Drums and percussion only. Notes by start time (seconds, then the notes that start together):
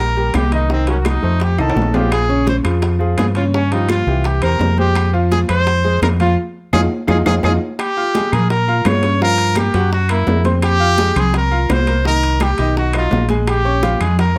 0.00 high conga
0.17 high bongo, high conga
0.34 high bongo, low bongo, high conga, high timbale, low timbale, claves
0.52 high timbale
0.70 high bongo, high conga
0.87 high bongo, high conga, high timbale
1.05 high bongo, high conga, high timbale, low timbale, claves
1.23 high bongo, high conga
1.40 high bongo, high conga, high timbale
1.58 high bongo, high conga, high timbale, claves
1.70 high timbale
1.76 high bongo, low bongo, high conga
1.82 low timbale
1.94 high conga, low timbale
2.11 high bongo, high timbale, claves
2.30 high bongo, high conga
2.47 high bongo, high conga, high timbale, low timbale
2.64 high bongo, high timbale, claves
2.82 high bongo, high conga, high timbale
3.01 high bongo, high conga
3.18 high bongo, low bongo, high conga, high timbale, low timbale, claves
3.35 high conga, high timbale
3.54 high bongo
3.72 high bongo, high timbale
3.89 high bongo, high conga, high timbale, low timbale, claves
4.07 high bongo, high conga
4.24 high bongo, high conga, high timbale
4.42 high bongo, high conga, high timbale, claves
4.59 high bongo, low bongo, high conga, low timbale
4.78 high conga
4.95 high bongo, high conga, high timbale, claves
5.14 high bongo, high conga
5.32 high bongo, high conga, high timbale, low timbale
5.49 high bongo, high conga, high timbale, claves
5.67 high bongo, high conga, high timbale
5.85 high bongo, high conga
6.02 high bongo, low bongo, high conga, high timbale, low timbale, claves
6.20 high conga, high timbale
6.73 low bongo, high conga, high timbale, claves
7.08 low bongo, high conga, high timbale, claves
7.26 low bongo, high conga, high timbale, claves
7.43 low bongo, high conga, high timbale, claves
7.79 high bongo, high conga, high timbale, claves
7.97 high conga
8.15 high bongo, high conga, high timbale, low timbale
8.32 high bongo, high conga, low conga, high timbale, claves
8.50 high bongo, high timbale
8.68 high bongo, high conga
8.85 high bongo, low bongo, high conga, high timbale, low timbale, claves
9.03 high bongo, high timbale
9.21 high bongo, high conga
9.38 high conga, high timbale
9.55 high bongo, high conga, high timbale, low timbale, claves
9.74 high bongo, high timbale
9.91 high bongo, high conga
10.09 high bongo, high conga, high timbale, claves
10.27 high bongo, low bongo, high conga, low timbale
10.44 high bongo, high conga, high timbale
10.62 high bongo, high conga, high timbale, claves
10.98 high bongo, high conga, high timbale, low timbale
11.16 high bongo, high conga, low conga, high timbale, claves
11.34 high bongo, high timbale
11.52 high bongo, high conga
11.69 high bongo, low bongo, high conga, high timbale, low timbale, claves
11.87 high bongo, high conga, high timbale
12.05 high bongo, high conga
12.23 high conga, high timbale
12.40 high bongo, high conga, high timbale, low timbale, claves
12.58 high bongo, high conga, high timbale
12.76 high bongo, high conga
12.93 high bongo, high conga, high timbale, claves
13.11 high bongo, low bongo, high conga, low timbale
13.29 high bongo, high conga, high timbale
13.47 high bongo, high timbale, claves
13.65 high conga
13.83 high bongo, high conga, high timbale, low timbale
14.00 high bongo, high conga, low conga, high timbale, claves
14.19 high bongo, high conga, high timbale